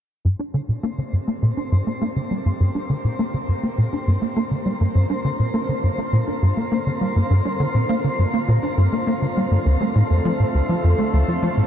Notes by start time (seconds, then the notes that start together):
0.25 G2 D3 A#3 C4 G4 A#4 C5
0.39 D4
0.54 D3
0.68 A#2
0.83 A#3
0.98 D3
1.13 G2
1.28 A#3
1.42 A#2
1.57 D4
1.72 G2
1.87 A#3
2.01 A#3
2.16 D3
2.31 G3
2.46 G2
2.60 G2
2.75 D4
2.90 D3
3.04 A#2
3.19 A#3
3.34 D3
3.48 G2
3.63 A#3
3.78 A#2
3.93 D4
4.07 G2
4.22 A#3
4.36 A#3
4.51 D3
4.66 G3
4.80 G2
4.95 G2 F4
5.10 D4
5.24 D3
5.39 A#2
5.54 A#3
5.69 D3
5.83 G2
5.98 A#3
6.13 A#2
6.27 D4
6.42 G2
6.57 A#3
6.72 A#3
6.87 D3
7.01 G3
7.16 G2
7.30 G2
7.45 D4
7.60 D3
7.74 A#2
7.89 A#3
8.04 D3
8.19 G2
8.34 A#3
8.48 A#2
8.63 D4
8.78 G2
8.92 A#3
9.07 A#3
9.22 D3
9.37 G3
9.51 G2
9.66 D2 A3 A4
9.81 A3
9.95 A2
10.10 F2
10.25 F3
10.40 A2
10.54 D2
10.69 F3
10.84 F2
10.98 A3
11.13 D2
11.28 F3
11.42 F3
11.57 A2